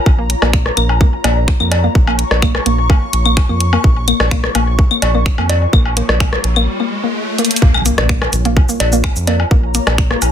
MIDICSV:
0, 0, Header, 1, 7, 480
1, 0, Start_track
1, 0, Key_signature, -5, "minor"
1, 0, Tempo, 472441
1, 63, Time_signature, 4, 2, 24, 8
1, 10482, End_track
2, 0, Start_track
2, 0, Title_t, "Ambient pad"
2, 0, Program_c, 0, 92
2, 0, Note_on_c, 0, 65, 84
2, 0, Note_on_c, 0, 73, 87
2, 0, Note_on_c, 0, 82, 91
2, 1707, Note_on_c, 0, 85, 89
2, 1729, Note_off_c, 0, 82, 0
2, 6783, Note_off_c, 0, 65, 0
2, 6783, Note_off_c, 0, 73, 0
2, 6808, Note_off_c, 0, 85, 0
2, 7742, Note_on_c, 0, 65, 94
2, 7875, Note_on_c, 0, 73, 94
2, 8943, Note_on_c, 0, 82, 80
2, 10482, Note_off_c, 0, 65, 0
2, 10482, Note_off_c, 0, 73, 0
2, 10482, Note_off_c, 0, 82, 0
2, 10482, End_track
3, 0, Start_track
3, 0, Title_t, "Synth arpeggio sound"
3, 0, Program_c, 1, 84
3, 188, Note_on_c, 1, 58, 77
3, 232, Note_off_c, 1, 58, 0
3, 427, Note_on_c, 1, 58, 75
3, 454, Note_off_c, 1, 58, 0
3, 783, Note_on_c, 1, 58, 77
3, 855, Note_off_c, 1, 58, 0
3, 1023, Note_on_c, 1, 58, 84
3, 1071, Note_off_c, 1, 58, 0
3, 1262, Note_on_c, 1, 58, 76
3, 1291, Note_off_c, 1, 58, 0
3, 1628, Note_on_c, 1, 58, 77
3, 1694, Note_off_c, 1, 58, 0
3, 1867, Note_on_c, 1, 58, 79
3, 1912, Note_off_c, 1, 58, 0
3, 2108, Note_on_c, 1, 58, 77
3, 2134, Note_off_c, 1, 58, 0
3, 2463, Note_on_c, 1, 58, 82
3, 2535, Note_off_c, 1, 58, 0
3, 2703, Note_on_c, 1, 58, 77
3, 2751, Note_off_c, 1, 58, 0
3, 2942, Note_on_c, 1, 58, 84
3, 2971, Note_off_c, 1, 58, 0
3, 3308, Note_on_c, 1, 58, 76
3, 3374, Note_off_c, 1, 58, 0
3, 3548, Note_on_c, 1, 58, 77
3, 3592, Note_off_c, 1, 58, 0
3, 3788, Note_on_c, 1, 58, 79
3, 3815, Note_off_c, 1, 58, 0
3, 4143, Note_on_c, 1, 58, 78
3, 4215, Note_off_c, 1, 58, 0
3, 4383, Note_on_c, 1, 58, 84
3, 4431, Note_off_c, 1, 58, 0
3, 4623, Note_on_c, 1, 58, 77
3, 4652, Note_off_c, 1, 58, 0
3, 4988, Note_on_c, 1, 58, 76
3, 5054, Note_off_c, 1, 58, 0
3, 5227, Note_on_c, 1, 58, 76
3, 5272, Note_off_c, 1, 58, 0
3, 5468, Note_on_c, 1, 58, 79
3, 5495, Note_off_c, 1, 58, 0
3, 5823, Note_on_c, 1, 58, 80
3, 5895, Note_off_c, 1, 58, 0
3, 6063, Note_on_c, 1, 58, 76
3, 6111, Note_off_c, 1, 58, 0
3, 6303, Note_on_c, 1, 58, 83
3, 6332, Note_off_c, 1, 58, 0
3, 6668, Note_on_c, 1, 58, 78
3, 6734, Note_off_c, 1, 58, 0
3, 6908, Note_on_c, 1, 58, 77
3, 6952, Note_off_c, 1, 58, 0
3, 7148, Note_on_c, 1, 58, 74
3, 7175, Note_off_c, 1, 58, 0
3, 7504, Note_on_c, 1, 58, 80
3, 7575, Note_off_c, 1, 58, 0
3, 7743, Note_on_c, 1, 58, 84
3, 7815, Note_off_c, 1, 58, 0
3, 7983, Note_on_c, 1, 58, 78
3, 8031, Note_off_c, 1, 58, 0
3, 8222, Note_on_c, 1, 58, 82
3, 8251, Note_off_c, 1, 58, 0
3, 8587, Note_on_c, 1, 58, 78
3, 8654, Note_off_c, 1, 58, 0
3, 8828, Note_on_c, 1, 58, 77
3, 8872, Note_off_c, 1, 58, 0
3, 9068, Note_on_c, 1, 58, 74
3, 9094, Note_off_c, 1, 58, 0
3, 9423, Note_on_c, 1, 58, 77
3, 9495, Note_off_c, 1, 58, 0
3, 9663, Note_on_c, 1, 58, 80
3, 9711, Note_off_c, 1, 58, 0
3, 9903, Note_on_c, 1, 58, 74
3, 9932, Note_off_c, 1, 58, 0
3, 10267, Note_on_c, 1, 58, 77
3, 10334, Note_off_c, 1, 58, 0
3, 10482, End_track
4, 0, Start_track
4, 0, Title_t, "Analog synth bass"
4, 0, Program_c, 2, 38
4, 63, Note_on_c, 2, 34, 94
4, 355, Note_off_c, 2, 34, 0
4, 428, Note_on_c, 2, 34, 95
4, 716, Note_off_c, 2, 34, 0
4, 783, Note_on_c, 2, 34, 89
4, 1075, Note_off_c, 2, 34, 0
4, 1263, Note_on_c, 2, 34, 95
4, 1555, Note_off_c, 2, 34, 0
4, 1627, Note_on_c, 2, 41, 86
4, 1916, Note_off_c, 2, 41, 0
4, 1983, Note_on_c, 2, 34, 91
4, 2275, Note_off_c, 2, 34, 0
4, 2348, Note_on_c, 2, 34, 100
4, 2636, Note_off_c, 2, 34, 0
4, 2702, Note_on_c, 2, 34, 88
4, 2995, Note_off_c, 2, 34, 0
4, 3182, Note_on_c, 2, 34, 98
4, 3475, Note_off_c, 2, 34, 0
4, 3548, Note_on_c, 2, 41, 87
4, 3836, Note_off_c, 2, 41, 0
4, 3903, Note_on_c, 2, 34, 92
4, 4195, Note_off_c, 2, 34, 0
4, 4268, Note_on_c, 2, 34, 94
4, 4556, Note_off_c, 2, 34, 0
4, 4623, Note_on_c, 2, 34, 90
4, 4915, Note_off_c, 2, 34, 0
4, 5103, Note_on_c, 2, 34, 97
4, 5395, Note_off_c, 2, 34, 0
4, 5468, Note_on_c, 2, 41, 89
4, 5756, Note_off_c, 2, 41, 0
4, 5823, Note_on_c, 2, 34, 92
4, 6115, Note_off_c, 2, 34, 0
4, 6187, Note_on_c, 2, 34, 97
4, 6476, Note_off_c, 2, 34, 0
4, 6543, Note_on_c, 2, 34, 88
4, 6783, Note_off_c, 2, 34, 0
4, 7743, Note_on_c, 2, 34, 96
4, 8035, Note_off_c, 2, 34, 0
4, 8107, Note_on_c, 2, 34, 98
4, 8396, Note_off_c, 2, 34, 0
4, 8462, Note_on_c, 2, 34, 88
4, 8755, Note_off_c, 2, 34, 0
4, 8943, Note_on_c, 2, 34, 99
4, 9235, Note_off_c, 2, 34, 0
4, 9307, Note_on_c, 2, 41, 88
4, 9596, Note_off_c, 2, 41, 0
4, 9662, Note_on_c, 2, 34, 95
4, 9955, Note_off_c, 2, 34, 0
4, 10028, Note_on_c, 2, 34, 99
4, 10316, Note_off_c, 2, 34, 0
4, 10383, Note_on_c, 2, 34, 91
4, 10482, Note_off_c, 2, 34, 0
4, 10482, End_track
5, 0, Start_track
5, 0, Title_t, "Impact"
5, 0, Program_c, 3, 103
5, 7743, Note_on_c, 3, 60, 76
5, 9663, Note_off_c, 3, 60, 0
5, 10482, End_track
6, 0, Start_track
6, 0, Title_t, "Riser"
6, 0, Program_c, 4, 103
6, 3903, Note_on_c, 4, 60, 77
6, 7743, Note_off_c, 4, 60, 0
6, 10482, End_track
7, 0, Start_track
7, 0, Title_t, "Drums"
7, 63, Note_on_c, 9, 36, 115
7, 63, Note_on_c, 9, 77, 46
7, 165, Note_off_c, 9, 36, 0
7, 165, Note_off_c, 9, 77, 0
7, 303, Note_on_c, 9, 42, 93
7, 405, Note_off_c, 9, 42, 0
7, 428, Note_on_c, 9, 37, 60
7, 428, Note_on_c, 9, 56, 76
7, 428, Note_on_c, 9, 77, 79
7, 529, Note_off_c, 9, 37, 0
7, 529, Note_off_c, 9, 56, 0
7, 529, Note_off_c, 9, 77, 0
7, 543, Note_on_c, 9, 26, 87
7, 543, Note_on_c, 9, 36, 107
7, 645, Note_off_c, 9, 26, 0
7, 645, Note_off_c, 9, 36, 0
7, 668, Note_on_c, 9, 37, 62
7, 769, Note_off_c, 9, 37, 0
7, 783, Note_on_c, 9, 42, 90
7, 783, Note_on_c, 9, 75, 66
7, 884, Note_off_c, 9, 42, 0
7, 884, Note_off_c, 9, 75, 0
7, 907, Note_on_c, 9, 77, 43
7, 1009, Note_off_c, 9, 77, 0
7, 1023, Note_on_c, 9, 36, 120
7, 1125, Note_off_c, 9, 36, 0
7, 1263, Note_on_c, 9, 42, 91
7, 1263, Note_on_c, 9, 56, 88
7, 1263, Note_on_c, 9, 77, 80
7, 1364, Note_off_c, 9, 56, 0
7, 1364, Note_off_c, 9, 77, 0
7, 1365, Note_off_c, 9, 42, 0
7, 1503, Note_on_c, 9, 26, 89
7, 1503, Note_on_c, 9, 36, 100
7, 1604, Note_off_c, 9, 26, 0
7, 1605, Note_off_c, 9, 36, 0
7, 1628, Note_on_c, 9, 75, 65
7, 1730, Note_off_c, 9, 75, 0
7, 1743, Note_on_c, 9, 42, 88
7, 1743, Note_on_c, 9, 56, 86
7, 1743, Note_on_c, 9, 77, 43
7, 1844, Note_off_c, 9, 56, 0
7, 1844, Note_off_c, 9, 77, 0
7, 1845, Note_off_c, 9, 42, 0
7, 1983, Note_on_c, 9, 36, 110
7, 2085, Note_off_c, 9, 36, 0
7, 2108, Note_on_c, 9, 77, 75
7, 2209, Note_off_c, 9, 77, 0
7, 2223, Note_on_c, 9, 42, 86
7, 2325, Note_off_c, 9, 42, 0
7, 2348, Note_on_c, 9, 37, 64
7, 2348, Note_on_c, 9, 56, 76
7, 2449, Note_off_c, 9, 37, 0
7, 2449, Note_off_c, 9, 56, 0
7, 2462, Note_on_c, 9, 75, 67
7, 2463, Note_on_c, 9, 26, 87
7, 2463, Note_on_c, 9, 36, 99
7, 2564, Note_off_c, 9, 26, 0
7, 2564, Note_off_c, 9, 36, 0
7, 2564, Note_off_c, 9, 75, 0
7, 2588, Note_on_c, 9, 37, 64
7, 2588, Note_on_c, 9, 77, 43
7, 2689, Note_off_c, 9, 37, 0
7, 2689, Note_off_c, 9, 77, 0
7, 2703, Note_on_c, 9, 42, 85
7, 2804, Note_off_c, 9, 42, 0
7, 2942, Note_on_c, 9, 77, 71
7, 2943, Note_on_c, 9, 36, 114
7, 3044, Note_off_c, 9, 36, 0
7, 3044, Note_off_c, 9, 77, 0
7, 3183, Note_on_c, 9, 42, 92
7, 3284, Note_off_c, 9, 42, 0
7, 3307, Note_on_c, 9, 75, 71
7, 3409, Note_off_c, 9, 75, 0
7, 3423, Note_on_c, 9, 26, 89
7, 3423, Note_on_c, 9, 36, 102
7, 3423, Note_on_c, 9, 77, 43
7, 3524, Note_off_c, 9, 26, 0
7, 3524, Note_off_c, 9, 77, 0
7, 3525, Note_off_c, 9, 36, 0
7, 3662, Note_on_c, 9, 42, 87
7, 3764, Note_off_c, 9, 42, 0
7, 3788, Note_on_c, 9, 77, 75
7, 3889, Note_off_c, 9, 77, 0
7, 3903, Note_on_c, 9, 36, 107
7, 4004, Note_off_c, 9, 36, 0
7, 4142, Note_on_c, 9, 42, 88
7, 4143, Note_on_c, 9, 75, 70
7, 4244, Note_off_c, 9, 42, 0
7, 4244, Note_off_c, 9, 75, 0
7, 4268, Note_on_c, 9, 37, 64
7, 4268, Note_on_c, 9, 56, 78
7, 4268, Note_on_c, 9, 77, 44
7, 4369, Note_off_c, 9, 37, 0
7, 4369, Note_off_c, 9, 56, 0
7, 4369, Note_off_c, 9, 77, 0
7, 4383, Note_on_c, 9, 26, 87
7, 4383, Note_on_c, 9, 36, 101
7, 4484, Note_off_c, 9, 26, 0
7, 4485, Note_off_c, 9, 36, 0
7, 4508, Note_on_c, 9, 37, 69
7, 4609, Note_off_c, 9, 37, 0
7, 4622, Note_on_c, 9, 42, 89
7, 4623, Note_on_c, 9, 77, 77
7, 4724, Note_off_c, 9, 42, 0
7, 4724, Note_off_c, 9, 77, 0
7, 4863, Note_on_c, 9, 36, 112
7, 4965, Note_off_c, 9, 36, 0
7, 4988, Note_on_c, 9, 75, 72
7, 5090, Note_off_c, 9, 75, 0
7, 5103, Note_on_c, 9, 42, 88
7, 5103, Note_on_c, 9, 56, 91
7, 5103, Note_on_c, 9, 77, 45
7, 5204, Note_off_c, 9, 42, 0
7, 5204, Note_off_c, 9, 56, 0
7, 5204, Note_off_c, 9, 77, 0
7, 5343, Note_on_c, 9, 26, 91
7, 5343, Note_on_c, 9, 36, 99
7, 5445, Note_off_c, 9, 26, 0
7, 5445, Note_off_c, 9, 36, 0
7, 5468, Note_on_c, 9, 77, 73
7, 5569, Note_off_c, 9, 77, 0
7, 5583, Note_on_c, 9, 42, 92
7, 5583, Note_on_c, 9, 56, 89
7, 5684, Note_off_c, 9, 42, 0
7, 5685, Note_off_c, 9, 56, 0
7, 5823, Note_on_c, 9, 36, 112
7, 5823, Note_on_c, 9, 75, 69
7, 5925, Note_off_c, 9, 36, 0
7, 5925, Note_off_c, 9, 75, 0
7, 5948, Note_on_c, 9, 77, 41
7, 6050, Note_off_c, 9, 77, 0
7, 6063, Note_on_c, 9, 42, 87
7, 6165, Note_off_c, 9, 42, 0
7, 6188, Note_on_c, 9, 37, 64
7, 6188, Note_on_c, 9, 56, 84
7, 6290, Note_off_c, 9, 37, 0
7, 6290, Note_off_c, 9, 56, 0
7, 6303, Note_on_c, 9, 26, 92
7, 6303, Note_on_c, 9, 36, 100
7, 6303, Note_on_c, 9, 77, 77
7, 6404, Note_off_c, 9, 26, 0
7, 6405, Note_off_c, 9, 36, 0
7, 6405, Note_off_c, 9, 77, 0
7, 6428, Note_on_c, 9, 37, 70
7, 6529, Note_off_c, 9, 37, 0
7, 6543, Note_on_c, 9, 42, 84
7, 6645, Note_off_c, 9, 42, 0
7, 6668, Note_on_c, 9, 75, 70
7, 6769, Note_off_c, 9, 75, 0
7, 7503, Note_on_c, 9, 42, 57
7, 7565, Note_off_c, 9, 42, 0
7, 7565, Note_on_c, 9, 42, 65
7, 7628, Note_off_c, 9, 42, 0
7, 7628, Note_on_c, 9, 42, 76
7, 7685, Note_off_c, 9, 42, 0
7, 7685, Note_on_c, 9, 42, 86
7, 7743, Note_on_c, 9, 36, 122
7, 7786, Note_off_c, 9, 42, 0
7, 7845, Note_off_c, 9, 36, 0
7, 7868, Note_on_c, 9, 75, 64
7, 7868, Note_on_c, 9, 77, 47
7, 7970, Note_off_c, 9, 75, 0
7, 7970, Note_off_c, 9, 77, 0
7, 7983, Note_on_c, 9, 42, 93
7, 7983, Note_on_c, 9, 69, 33
7, 8084, Note_off_c, 9, 42, 0
7, 8084, Note_off_c, 9, 69, 0
7, 8108, Note_on_c, 9, 37, 67
7, 8108, Note_on_c, 9, 42, 39
7, 8108, Note_on_c, 9, 56, 84
7, 8209, Note_off_c, 9, 37, 0
7, 8209, Note_off_c, 9, 42, 0
7, 8209, Note_off_c, 9, 56, 0
7, 8222, Note_on_c, 9, 26, 94
7, 8223, Note_on_c, 9, 36, 104
7, 8324, Note_off_c, 9, 26, 0
7, 8324, Note_off_c, 9, 36, 0
7, 8348, Note_on_c, 9, 37, 72
7, 8348, Note_on_c, 9, 77, 78
7, 8449, Note_off_c, 9, 37, 0
7, 8449, Note_off_c, 9, 77, 0
7, 8462, Note_on_c, 9, 42, 87
7, 8462, Note_on_c, 9, 69, 33
7, 8564, Note_off_c, 9, 42, 0
7, 8564, Note_off_c, 9, 69, 0
7, 8587, Note_on_c, 9, 42, 38
7, 8689, Note_off_c, 9, 42, 0
7, 8703, Note_on_c, 9, 36, 122
7, 8703, Note_on_c, 9, 77, 43
7, 8804, Note_off_c, 9, 36, 0
7, 8804, Note_off_c, 9, 77, 0
7, 8827, Note_on_c, 9, 69, 33
7, 8929, Note_off_c, 9, 69, 0
7, 8942, Note_on_c, 9, 42, 92
7, 8942, Note_on_c, 9, 56, 101
7, 9044, Note_off_c, 9, 42, 0
7, 9044, Note_off_c, 9, 56, 0
7, 9068, Note_on_c, 9, 69, 33
7, 9169, Note_off_c, 9, 69, 0
7, 9182, Note_on_c, 9, 26, 98
7, 9182, Note_on_c, 9, 75, 65
7, 9182, Note_on_c, 9, 77, 80
7, 9183, Note_on_c, 9, 36, 104
7, 9284, Note_off_c, 9, 26, 0
7, 9284, Note_off_c, 9, 36, 0
7, 9284, Note_off_c, 9, 75, 0
7, 9284, Note_off_c, 9, 77, 0
7, 9307, Note_on_c, 9, 69, 34
7, 9409, Note_off_c, 9, 69, 0
7, 9422, Note_on_c, 9, 42, 95
7, 9422, Note_on_c, 9, 56, 97
7, 9524, Note_off_c, 9, 42, 0
7, 9524, Note_off_c, 9, 56, 0
7, 9547, Note_on_c, 9, 77, 47
7, 9649, Note_off_c, 9, 77, 0
7, 9663, Note_on_c, 9, 36, 122
7, 9764, Note_off_c, 9, 36, 0
7, 9903, Note_on_c, 9, 42, 95
7, 9903, Note_on_c, 9, 69, 33
7, 10004, Note_off_c, 9, 42, 0
7, 10004, Note_off_c, 9, 69, 0
7, 10027, Note_on_c, 9, 37, 64
7, 10027, Note_on_c, 9, 56, 87
7, 10027, Note_on_c, 9, 77, 81
7, 10028, Note_on_c, 9, 42, 40
7, 10129, Note_off_c, 9, 37, 0
7, 10129, Note_off_c, 9, 42, 0
7, 10129, Note_off_c, 9, 56, 0
7, 10129, Note_off_c, 9, 77, 0
7, 10143, Note_on_c, 9, 26, 93
7, 10143, Note_on_c, 9, 36, 110
7, 10244, Note_off_c, 9, 36, 0
7, 10245, Note_off_c, 9, 26, 0
7, 10268, Note_on_c, 9, 37, 68
7, 10369, Note_off_c, 9, 37, 0
7, 10383, Note_on_c, 9, 42, 92
7, 10383, Note_on_c, 9, 69, 32
7, 10383, Note_on_c, 9, 77, 50
7, 10482, Note_off_c, 9, 42, 0
7, 10482, Note_off_c, 9, 69, 0
7, 10482, Note_off_c, 9, 77, 0
7, 10482, End_track
0, 0, End_of_file